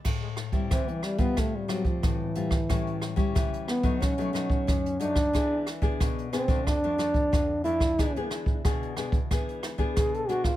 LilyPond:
<<
  \new Staff \with { instrumentName = "Trombone" } { \time 4/4 \key a \minor \tempo 4 = 91 r4 c'16 e16 g16 b16 a16 g16 fis16 f16 e4~ | e4 r8 b8 cis'4. d'8~ | d'8 r4 c'8 d'4. e'8~ | e'8 r2 r8 gis'16 a'16 fis'16 f'16 | }
  \new Staff \with { instrumentName = "Nylon-string guitar" } { \time 4/4 \key a \minor << { r8. <g c' e'>4 <g c' f'>8. <g c' f'>4 <g c' f'>16 r16 | <g cis' e'>8. <g cis' e'>4 <fis a dis'>8 <fis a dis'>16 <fis a dis'>4 <fis a dis'>8 | <b d' gis'>8 r16 <b d' gis'>8. <b d' gis'>16 <f a d'>8 <f a d'>16 <f a d'>8. r16 <f a d'>8 | <b d' gis'>16 <b d' gis'>8. <b d' gis'>8 <b d' gis'>16 r16 <b d' gis'>8. <b d' gis'>8. <b d' gis'>16 r16 | } \\ { a,4 e4 a,4 a,4 | a,4 e4 b,4 fis,4 | e4 b,4 f,4 f,4 | e4 b,4 e4 b,4 | } >> }
  \new DrumStaff \with { instrumentName = "Drums" } \drummode { \time 4/4 <cymc bd ss>8 <hh ss>16 bd16 <hh bd ss>16 hh16 <hh ss>16 <hh bd>16 <hh bd ss>8 <hh ss>16 <hh bd>16 <hh bd ss>8 hh16 <bd ss>16 | <hh bd ss>16 hh16 <hh ss>16 bd16 <hh bd ss>16 hh16 <hh ss>16 <hh bd>16 <hh bd ss>16 hh16 <hh ss>16 bd16 <hh bd ss>16 hh16 hh16 <bd ss>16 | <hh bd ss>8 <hh ss>16 bd16 <hh bd ss>16 hh16 <hh ss>16 <hh bd>16 <hh bd ss>8 <hh ss>16 <hh bd>16 <hh bd ss>8 hh16 <bd ss>16 | <hh bd ss>16 hh16 <hh ss>16 bd16 <hh bd ss>16 hh16 <hh ss>16 <hh bd>16 <hh bd ss>16 hh16 <hh ss>16 bd16 <hh bd ss>16 hh16 hh16 <bd ss>16 | }
>>